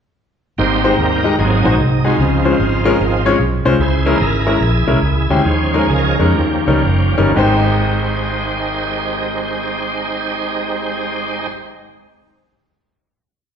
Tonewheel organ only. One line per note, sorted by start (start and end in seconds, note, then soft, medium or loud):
0.58 1.21 G3 soft
0.58 1.21 A#3 soft
0.58 1.21 C4 medium
0.58 0.97 D#4 medium
0.58 0.98 G4 medium
0.58 0.91 C5 medium
0.92 0.98 C5 medium
0.99 1.36 D#4 medium
0.99 1.36 G4 medium
0.99 1.36 A#4 medium
1.38 1.68 F#3 soft
1.38 1.69 A#3 soft
1.38 1.69 C4 medium
1.38 2.15 D#4 medium
1.38 1.76 G#4 medium
2.06 3.22 G#3 medium
2.06 2.18 C4 soft
2.06 3.22 F4 medium
2.18 3.25 F3 soft
2.18 3.25 C4 soft
2.18 3.25 D#4 medium
3.26 3.38 F3 soft
3.26 3.39 C4 soft
3.26 3.39 D#4 soft
3.80 4.20 E4 medium
3.80 4.57 G#4 medium
3.80 4.22 C5 medium
4.05 4.29 E3 soft
4.05 4.29 A#3 soft
4.05 4.29 D#4 medium
4.21 4.60 E4 medium
4.21 4.63 A#4 medium
4.61 5.42 E4 medium
4.61 5.28 G#4 medium
5.29 6.15 G#4 medium
5.29 5.86 C5 medium
5.44 6.16 F3 soft
5.44 6.16 G#3 soft
5.44 6.16 C#4 medium
5.91 6.18 A#4 medium
6.21 7.15 A#3 soft
6.21 6.35 C#4 soft
6.21 7.16 G4 medium
6.35 7.32 F3 soft
6.35 7.33 G3 soft
6.35 7.33 C#4 soft
7.37 11.47 G#3 medium
7.37 11.47 D#4 medium
7.37 11.47 G4 medium
7.37 11.47 C5 medium